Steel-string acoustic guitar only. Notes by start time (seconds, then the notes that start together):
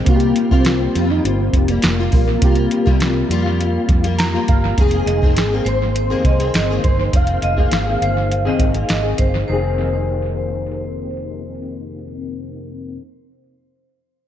0.07 C3 G3 A#3 F4
0.51 C3 G3 A#3 F4
0.95 C3 G3 A#3 F4
1.69 G3 A#3 F4
1.99 G3 A#3 F4
2.43 C3 G3 A#3 F4
2.86 C3 G3 A#3 F4
3.30 C3 G3 A#3 F4
4.04 G3 A#3 F4
4.33 G3 A#3 F4
4.78 D#3 A#3 C4 G#4
5.22 D#3 A#3 C4 G#4
5.52 D#3 A#3 C4 G#4
6.10 F2 C3 D#3 A#3 C4 G#4
6.39 D#3 A#3 C4 G#4
6.70 D#3 A#3 C4 G#4
7.13 D#3 A#3 C4 G#4
7.57 D#3 A#3 C4 G#4
7.86 D#3 A#3 C4 G#4
8.45 F2 C3 D#3 A#3 C4 G#4
8.74 D#3 A#3 C4 G#4
9.03 D#3 A#3 C4 G#4
9.46 F2 C3 D#3
9.50 A#3 C4 G#4